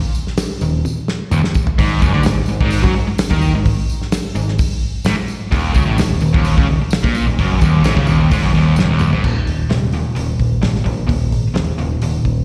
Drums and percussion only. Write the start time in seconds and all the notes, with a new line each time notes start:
0.15 tambourine
0.27 snare
0.37 snare, open hi-hat, tambourine
0.61 tambourine
0.85 high tom, tambourine
1.08 snare, tambourine
1.31 mid tom, tambourine
1.44 snare
1.54 kick, tambourine
1.67 floor tom
1.78 kick, open hi-hat, tambourine
2.02 kick, tambourine
2.23 snare, open hi-hat, tambourine
2.46 tambourine
2.61 kick
2.71 open hi-hat, tambourine
2.84 kick
3.18 snare, open hi-hat, tambourine
3.31 kick
3.41 tambourine
3.65 kick, open hi-hat, tambourine
3.90 tambourine
4.02 snare
4.12 snare, open hi-hat, tambourine
4.36 tambourine
4.48 snare
4.58 kick, open hi-hat, tambourine
5.04 snare, open hi-hat, tambourine
5.28 tambourine
5.52 kick, open hi-hat, tambourine
5.74 kick, tambourine
5.98 snare, open hi-hat, tambourine
6.20 tambourine
6.34 kick
6.45 open hi-hat, tambourine
6.58 kick
6.91 snare, open hi-hat, tambourine
7.04 kick
7.15 tambourine
7.39 kick, open hi-hat, tambourine
7.61 kick, tambourine
7.84 snare, open hi-hat, tambourine
7.97 kick
8.07 tambourine
8.31 kick, open hi-hat, tambourine
8.54 tambourine
8.76 snare, tambourine
8.99 mid tom, tambourine
9.13 floor tom
9.24 kick, crash
9.47 open hi-hat
9.70 snare, open hi-hat
9.93 open hi-hat
10.16 open hi-hat
10.40 kick, open hi-hat
10.63 snare, open hi-hat
10.75 snare
10.86 kick, open hi-hat
11.09 kick, open hi-hat
11.32 open hi-hat
11.56 snare, open hi-hat
11.79 open hi-hat
12.02 open hi-hat
12.25 kick, open hi-hat